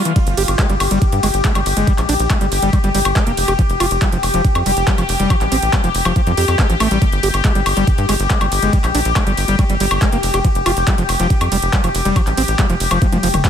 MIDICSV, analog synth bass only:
0, 0, Header, 1, 2, 480
1, 0, Start_track
1, 0, Tempo, 428571
1, 179, Time_signature, 4, 2, 24, 8
1, 15118, End_track
2, 0, Start_track
2, 0, Title_t, "Analog synth bass"
2, 0, Program_c, 0, 38
2, 299, Note_on_c, 0, 31, 88
2, 384, Note_off_c, 0, 31, 0
2, 419, Note_on_c, 0, 31, 103
2, 504, Note_off_c, 0, 31, 0
2, 539, Note_on_c, 0, 31, 94
2, 624, Note_off_c, 0, 31, 0
2, 779, Note_on_c, 0, 31, 86
2, 864, Note_off_c, 0, 31, 0
2, 899, Note_on_c, 0, 31, 102
2, 985, Note_off_c, 0, 31, 0
2, 1020, Note_on_c, 0, 31, 95
2, 1105, Note_off_c, 0, 31, 0
2, 1259, Note_on_c, 0, 43, 89
2, 1345, Note_off_c, 0, 43, 0
2, 1379, Note_on_c, 0, 31, 103
2, 1465, Note_off_c, 0, 31, 0
2, 1499, Note_on_c, 0, 31, 89
2, 1585, Note_off_c, 0, 31, 0
2, 1740, Note_on_c, 0, 31, 88
2, 1825, Note_off_c, 0, 31, 0
2, 1859, Note_on_c, 0, 31, 100
2, 1945, Note_off_c, 0, 31, 0
2, 1979, Note_on_c, 0, 31, 90
2, 2065, Note_off_c, 0, 31, 0
2, 2219, Note_on_c, 0, 34, 88
2, 2305, Note_off_c, 0, 34, 0
2, 2339, Note_on_c, 0, 34, 100
2, 2424, Note_off_c, 0, 34, 0
2, 2459, Note_on_c, 0, 34, 97
2, 2545, Note_off_c, 0, 34, 0
2, 2699, Note_on_c, 0, 31, 87
2, 2785, Note_off_c, 0, 31, 0
2, 2819, Note_on_c, 0, 31, 102
2, 2904, Note_off_c, 0, 31, 0
2, 2939, Note_on_c, 0, 31, 95
2, 3025, Note_off_c, 0, 31, 0
2, 3179, Note_on_c, 0, 31, 86
2, 3265, Note_off_c, 0, 31, 0
2, 3299, Note_on_c, 0, 31, 101
2, 3385, Note_off_c, 0, 31, 0
2, 3419, Note_on_c, 0, 31, 92
2, 3505, Note_off_c, 0, 31, 0
2, 3659, Note_on_c, 0, 29, 86
2, 3745, Note_off_c, 0, 29, 0
2, 3779, Note_on_c, 0, 29, 104
2, 3864, Note_off_c, 0, 29, 0
2, 3899, Note_on_c, 0, 29, 90
2, 3985, Note_off_c, 0, 29, 0
2, 4139, Note_on_c, 0, 29, 90
2, 4225, Note_off_c, 0, 29, 0
2, 4259, Note_on_c, 0, 29, 101
2, 4345, Note_off_c, 0, 29, 0
2, 4379, Note_on_c, 0, 29, 95
2, 4464, Note_off_c, 0, 29, 0
2, 4619, Note_on_c, 0, 29, 86
2, 4705, Note_off_c, 0, 29, 0
2, 4739, Note_on_c, 0, 29, 101
2, 4825, Note_off_c, 0, 29, 0
2, 4859, Note_on_c, 0, 29, 95
2, 4944, Note_off_c, 0, 29, 0
2, 5099, Note_on_c, 0, 41, 89
2, 5185, Note_off_c, 0, 41, 0
2, 5219, Note_on_c, 0, 29, 105
2, 5305, Note_off_c, 0, 29, 0
2, 5339, Note_on_c, 0, 29, 90
2, 5424, Note_off_c, 0, 29, 0
2, 5579, Note_on_c, 0, 29, 90
2, 5665, Note_off_c, 0, 29, 0
2, 5699, Note_on_c, 0, 29, 103
2, 5785, Note_off_c, 0, 29, 0
2, 5819, Note_on_c, 0, 29, 91
2, 5905, Note_off_c, 0, 29, 0
2, 6059, Note_on_c, 0, 33, 86
2, 6145, Note_off_c, 0, 33, 0
2, 6179, Note_on_c, 0, 33, 102
2, 6265, Note_off_c, 0, 33, 0
2, 6299, Note_on_c, 0, 33, 92
2, 6385, Note_off_c, 0, 33, 0
2, 6539, Note_on_c, 0, 29, 86
2, 6624, Note_off_c, 0, 29, 0
2, 6659, Note_on_c, 0, 29, 101
2, 6744, Note_off_c, 0, 29, 0
2, 6779, Note_on_c, 0, 29, 93
2, 6864, Note_off_c, 0, 29, 0
2, 7019, Note_on_c, 0, 41, 88
2, 7105, Note_off_c, 0, 41, 0
2, 7139, Note_on_c, 0, 41, 101
2, 7225, Note_off_c, 0, 41, 0
2, 7259, Note_on_c, 0, 41, 90
2, 7345, Note_off_c, 0, 41, 0
2, 7499, Note_on_c, 0, 33, 89
2, 7585, Note_off_c, 0, 33, 0
2, 7619, Note_on_c, 0, 33, 99
2, 7705, Note_off_c, 0, 33, 0
2, 7739, Note_on_c, 0, 33, 93
2, 7825, Note_off_c, 0, 33, 0
2, 7979, Note_on_c, 0, 31, 86
2, 8065, Note_off_c, 0, 31, 0
2, 8099, Note_on_c, 0, 31, 104
2, 8185, Note_off_c, 0, 31, 0
2, 8220, Note_on_c, 0, 31, 96
2, 8305, Note_off_c, 0, 31, 0
2, 8459, Note_on_c, 0, 31, 87
2, 8545, Note_off_c, 0, 31, 0
2, 8579, Note_on_c, 0, 31, 100
2, 8665, Note_off_c, 0, 31, 0
2, 8699, Note_on_c, 0, 31, 93
2, 8785, Note_off_c, 0, 31, 0
2, 8939, Note_on_c, 0, 43, 85
2, 9025, Note_off_c, 0, 43, 0
2, 9059, Note_on_c, 0, 31, 103
2, 9145, Note_off_c, 0, 31, 0
2, 9179, Note_on_c, 0, 31, 94
2, 9265, Note_off_c, 0, 31, 0
2, 9419, Note_on_c, 0, 31, 88
2, 9505, Note_off_c, 0, 31, 0
2, 9539, Note_on_c, 0, 31, 101
2, 9625, Note_off_c, 0, 31, 0
2, 9660, Note_on_c, 0, 31, 89
2, 9745, Note_off_c, 0, 31, 0
2, 9899, Note_on_c, 0, 34, 89
2, 9985, Note_off_c, 0, 34, 0
2, 10020, Note_on_c, 0, 34, 101
2, 10105, Note_off_c, 0, 34, 0
2, 10140, Note_on_c, 0, 34, 94
2, 10225, Note_off_c, 0, 34, 0
2, 10380, Note_on_c, 0, 31, 89
2, 10465, Note_off_c, 0, 31, 0
2, 10499, Note_on_c, 0, 31, 100
2, 10585, Note_off_c, 0, 31, 0
2, 10620, Note_on_c, 0, 31, 95
2, 10705, Note_off_c, 0, 31, 0
2, 10860, Note_on_c, 0, 31, 85
2, 10945, Note_off_c, 0, 31, 0
2, 10979, Note_on_c, 0, 31, 104
2, 11064, Note_off_c, 0, 31, 0
2, 11099, Note_on_c, 0, 31, 92
2, 11184, Note_off_c, 0, 31, 0
2, 11339, Note_on_c, 0, 29, 87
2, 11424, Note_off_c, 0, 29, 0
2, 11459, Note_on_c, 0, 29, 100
2, 11544, Note_off_c, 0, 29, 0
2, 11579, Note_on_c, 0, 29, 89
2, 11664, Note_off_c, 0, 29, 0
2, 11819, Note_on_c, 0, 29, 87
2, 11905, Note_off_c, 0, 29, 0
2, 11939, Note_on_c, 0, 29, 100
2, 12025, Note_off_c, 0, 29, 0
2, 12059, Note_on_c, 0, 29, 97
2, 12145, Note_off_c, 0, 29, 0
2, 12300, Note_on_c, 0, 29, 86
2, 12385, Note_off_c, 0, 29, 0
2, 12419, Note_on_c, 0, 29, 103
2, 12505, Note_off_c, 0, 29, 0
2, 12539, Note_on_c, 0, 29, 96
2, 12625, Note_off_c, 0, 29, 0
2, 12779, Note_on_c, 0, 41, 88
2, 12865, Note_off_c, 0, 41, 0
2, 12899, Note_on_c, 0, 29, 105
2, 12985, Note_off_c, 0, 29, 0
2, 13019, Note_on_c, 0, 29, 94
2, 13105, Note_off_c, 0, 29, 0
2, 13259, Note_on_c, 0, 29, 91
2, 13345, Note_off_c, 0, 29, 0
2, 13380, Note_on_c, 0, 29, 102
2, 13465, Note_off_c, 0, 29, 0
2, 13499, Note_on_c, 0, 29, 95
2, 13584, Note_off_c, 0, 29, 0
2, 13740, Note_on_c, 0, 33, 87
2, 13825, Note_off_c, 0, 33, 0
2, 13860, Note_on_c, 0, 33, 101
2, 13945, Note_off_c, 0, 33, 0
2, 13979, Note_on_c, 0, 33, 95
2, 14065, Note_off_c, 0, 33, 0
2, 14219, Note_on_c, 0, 29, 85
2, 14305, Note_off_c, 0, 29, 0
2, 14339, Note_on_c, 0, 29, 104
2, 14424, Note_off_c, 0, 29, 0
2, 14459, Note_on_c, 0, 29, 97
2, 14545, Note_off_c, 0, 29, 0
2, 14699, Note_on_c, 0, 29, 89
2, 14785, Note_off_c, 0, 29, 0
2, 14819, Note_on_c, 0, 29, 104
2, 14905, Note_off_c, 0, 29, 0
2, 14939, Note_on_c, 0, 29, 93
2, 15024, Note_off_c, 0, 29, 0
2, 15118, End_track
0, 0, End_of_file